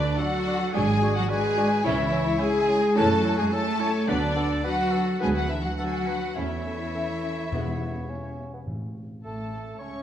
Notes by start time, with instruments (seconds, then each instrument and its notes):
Already playing: double bass section D2, cello section D3, violin section D4 D5, french horn section D4, oboe B4, flute section D5
0.18 cello section F#3, bassoon D4, clarinet F#4, french horn section F#4, violin section F#4 F#5, oboe A4, flute section F#5
0.46 bassoon D4, clarinet F#4
0.73 double bass section G#1, viola section F#3 D4, cello section G#3, bassoon D4, clarinet F#4, oboe G#4, violin section G#4 G#5, french horn section G#4, flute section G#5
1.02 bassoon D4, clarinet F#4
1.15 cello section F#3, french horn section F#4, violin section F#4 F#5, flute section F#5
1.28 cello section G#3, bassoon D4, clarinet F#4, french horn section G#4, violin section G#4 G#5, oboe B4, flute section G#5
1.56 bassoon D4, clarinet F#4
1.83 double bass section C#2, viola section E3 C#4, cello section E3, bassoon C#4, french horn section E4, clarinet E4, violin section E4 E5, oboe C#5, flute section E5
2.11 bassoon C#4, clarinet E4
2.39 cello section G#3, bassoon C#4, clarinet E4, oboe E4, violin section G#4 G#5, french horn section G#4, flute section G#5
2.67 bassoon C#4, clarinet E4, oboe G#4
2.95 double bass section F#2, viola section E3 C#4, cello section A3, bassoon C#4, clarinet E4, oboe F#4, violin section A4 A5, french horn section A4, flute section A5
3.24 bassoon C#4, clarinet E4
3.37 cello section G#3, french horn section G#4, violin section G#4 G#5, flute section G#5
3.51 cello section A3, bassoon C#4, clarinet E4, violin section A4 A5, french horn section A4, oboe A4, flute section A5
3.79 bassoon C#4, clarinet E4, oboe C#5
4.08 double bass section D2, cello section D3, viola section F#3 B3, bassoon B3, clarinet D4, french horn section D4, violin section D4 D5, oboe B4, flute section D5
4.35 bassoon B3, clarinet D4, oboe A4
4.63 cello section F#3, bassoon B3, clarinet D4, french horn section F#4, violin section F#4 F#5, oboe B4, flute section F#5
4.92 bassoon B3, clarinet D4, oboe A4
5.19 double bass section D2, viola section F#3 B3, cello section G#3, bassoon B3, clarinet D4, french horn section G#4, violin section G#4 G#5, oboe B4, flute section G#5
5.34 cello section F#3, violin section F#4 F#5, french horn section F#4, flute section F#5
5.48 cello section E3, bassoon B3, clarinet D4, violin section E4 E5, french horn section E4, flute section E5
5.63 cello section F#3, violin section F#4 F#5, french horn section F#4, flute section F#5
5.77 cello section F#3, bassoon B3, clarinet D4, violin section F#4 F#5, french horn section F#4, oboe A4, flute section F#5
5.85 violin section G#5
5.95 violin section F#5
6.03 oboe B4, violin section G#5
6.07 bassoon B3, clarinet D4, violin section F#5
6.35 double bass section E2, cello section E3, viola section A3 C#4, bassoon A3, clarinet C#4, violin section E4 E5, french horn section E4, oboe C#5, flute section E5
6.64 bassoon A3, clarinet C#4
6.94 bassoon A3, clarinet C#4
7.22 clarinet C#4
7.52 timpani E2, double bass section E2, viola section G#3 B3, clarinet B3, bassoon B3
7.81 clarinet B3
8.10 clarinet B3, bassoon C#4
8.39 clarinet B3
8.54 bassoon B3
8.67 timpani A2
9.23 double bass section A1, cello section A2, bassoon A3, viola section A3, french horn section A3, violin section A4 A5, oboe A4, flute section A5
9.79 double bass section C#2, cello section C#3, viola section C#4, bassoon C#4, french horn section C#4, oboe C#5, violin section C#5 C#6, clarinet E5, flute section C#6